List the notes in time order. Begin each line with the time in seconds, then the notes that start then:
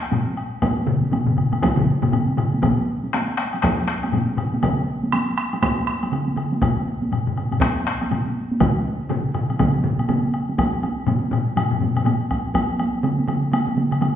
0.02 high woodblock
0.12 taiko low-mid, taiko high, high woodblock
0.26 taiko high
0.37 high woodblock
0.62 taiko, taiko high, high woodblock
0.87 taiko low-mid, taiko mid
1.02 taiko high
1.11 taiko low-mid, taiko mid, taiko high, high woodblock
1.26 taiko low-mid, taiko mid
1.37 taiko low-mid, taiko mid, high woodblock
1.52 taiko low-mid, taiko mid, taiko high, high woodblock
1.62 taiko, taiko high, high woodblock
1.76 taiko low-mid, taiko mid
2.02 taiko low-mid, taiko mid, taiko high, high woodblock
2.12 taiko low-mid, taiko mid, taiko high, high woodblock
2.29 taiko high
2.37 taiko low-mid, taiko mid, high woodblock
2.54 taiko high
2.62 taiko, taiko low-mid, taiko high, high woodblock
3.04 taiko high
3.13 taiko rim, taiko high, high woodblock
3.38 taiko rim, high woodblock
3.53 taiko high, high woodblock
3.63 taiko rim, taiko, taiko high, high woodblock
3.88 taiko rim
4.03 taiko high, high woodblock
4.12 taiko low-mid, taiko high, high woodblock
4.28 taiko high
4.37 taiko low-mid, high woodblock
4.54 taiko high
4.62 taiko, taiko mid, taiko high, high woodblock
5.03 taiko high
5.12 taiko rim, taiko high, high woodblock
5.37 taiko rim, high woodblock
5.53 taiko high, high woodblock
5.62 taiko rim, taiko, taiko high, high woodblock
5.87 taiko rim
6.03 taiko high, high woodblock
6.12 taiko mid, taiko high, high woodblock
6.28 taiko high
6.36 taiko mid, high woodblock
6.52 taiko high
6.62 taiko, taiko low-mid, taiko high, high woodblock
7.02 taiko high
7.12 taiko low-mid, taiko high, high woodblock
7.27 taiko low-mid
7.37 taiko low-mid, high woodblock
7.51 taiko low-mid, taiko high, high woodblock
7.61 taiko rim, taiko, taiko high, high woodblock
7.87 taiko rim
8.01 taiko high, high woodblock
8.11 taiko low-mid, taiko high, high woodblock
8.26 taiko high
8.51 taiko high
8.60 taiko, taiko low-mid, taiko mid, taiko high, high woodblock
9.09 taiko low-mid, taiko mid, taiko high, high woodblock
9.34 taiko low-mid, taiko mid, high woodblock
9.50 taiko high, high woodblock
9.59 taiko, taiko low-mid, taiko mid, taiko high, high woodblock
9.84 taiko low-mid, taiko mid
9.99 taiko high, high woodblock
10.09 taiko low-mid, taiko mid, taiko high, high woodblock
10.25 taiko high
10.34 high woodblock
10.49 taiko high
10.58 taiko, taiko high, high woodblock
10.73 taiko high
10.83 taiko high, high woodblock
10.98 taiko high
11.07 taiko low-mid, taiko high, high woodblock
11.23 taiko high
11.32 taiko low-mid, taiko high, high woodblock
11.56 taiko low-mid, taiko high, high woodblock
11.71 taiko low-mid, taiko high
11.80 taiko low-mid, taiko high
11.95 taiko low-mid, taiko high, high woodblock
12.05 taiko low-mid, taiko high, high woodblock
12.21 taiko high
12.31 taiko, taiko high, high woodblock
12.46 taiko high
12.54 taiko, taiko high, high woodblock
12.70 taiko high
12.79 taiko high, high woodblock
12.94 taiko high
13.03 taiko mid, taiko high, high woodblock
13.19 taiko high
13.28 taiko mid, taiko high, high woodblock
13.44 taiko high
13.52 taiko mid, taiko high, high woodblock
13.67 taiko mid, taiko high
13.77 taiko mid, taiko high
13.91 taiko mid, taiko high, high woodblock
14.01 taiko mid, taiko high, high woodblock